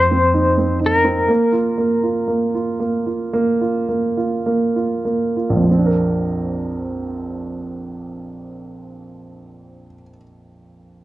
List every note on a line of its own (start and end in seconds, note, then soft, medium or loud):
0.00 1.25 F2 medium
0.00 1.25 F3 medium
0.00 0.11 C4 medium
0.00 0.78 C5 medium
0.00 1.25 C5 medium
0.11 0.56 C4 medium
0.34 0.79 D#4 medium
0.58 1.03 C4 medium
0.81 1.27 D#4 medium
0.86 4.44 A#4 medium
1.04 1.28 C4 medium
1.28 1.76 A#3 medium
1.52 2.02 F4 medium
1.78 2.26 A#3 medium
2.03 2.53 F4 medium
2.28 2.78 A#3 medium
2.55 3.05 F4 medium
2.80 3.32 A#3 medium
3.06 3.60 F4 soft
3.33 3.87 A#3 medium
3.61 4.16 F4 medium
3.89 4.45 A#3 medium
4.17 4.74 F4 medium
4.46 5.04 A#3 medium
4.76 5.35 F4 soft
5.05 5.65 A#3 medium
5.37 5.67 F4 soft
5.49 9.86 A#1 medium
5.57 9.94 F2 medium
5.64 10.01 F3 medium
5.71 10.08 C4 medium
5.78 10.15 D4 medium
5.86 10.23 A#4 medium